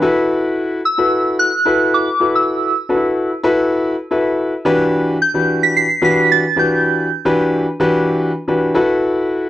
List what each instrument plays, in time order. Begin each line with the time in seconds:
0.02 grand piano E4 F#4 A4 B4
0.85 synth bell E6
0.98 grand piano E4 F#4 A4 B4
1.39 synth bell F#6
1.65 grand piano E4 F#4 A4 B4
1.94 synth bell D6
2.20 grand piano E4 F#4 A4 B4
2.35 synth bell E6
2.89 grand piano D4 F#4 A4 B4
2.96 grand piano E4
3.43 grand piano E4 F#4 A4 B4
4.11 grand piano E4 F#4 A4 B4 E5
4.65 grand piano E3 D4 F#4 G4 B4
5.22 synth bell G6
5.34 grand piano E3 D4 F#4 G4 B4
5.63 synth bell B6
5.77 synth bell C7
6.02 grand piano E3 D4 F#4 G4 B4, synth bell B6
6.32 synth bell A6
6.56 grand piano E3 D4 F#4 G4 B4, synth bell G6
7.25 grand piano E3 D4 F#4 G4 B4
7.80 grand piano E3 D4 F#4 G4 B4
8.48 grand piano E3 D4 F#4 G4 B4
8.74 grand piano E4 F#4 A4 B4